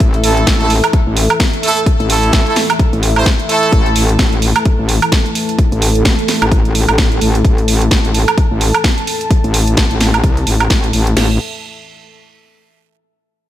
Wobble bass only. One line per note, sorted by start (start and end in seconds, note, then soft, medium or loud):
0.00 0.45 A1 loud
0.47 0.82 A1 loud
1.07 1.28 A1 loud
2.00 2.31 A1 loud
2.33 2.44 A1 medium
2.93 3.24 A1 loud
3.73 4.17 A1 loud
4.19 4.54 A1 loud
4.79 5.00 A1 medium
5.72 6.03 A1 loud
6.05 6.16 A1 medium
6.42 6.86 A1 medium
6.88 7.20 A1 loud
7.21 7.43 A1 medium
7.45 7.90 A1 loud
7.91 8.26 A1 loud
8.51 8.72 A1 loud
9.44 9.76 A1 loud
9.77 9.89 A1 loud
9.91 10.22 A1 loud
10.24 10.45 C2 medium
10.47 10.69 A1 loud
10.70 10.92 A1 loud
10.93 11.15 A1 loud
11.17 11.38 A1 medium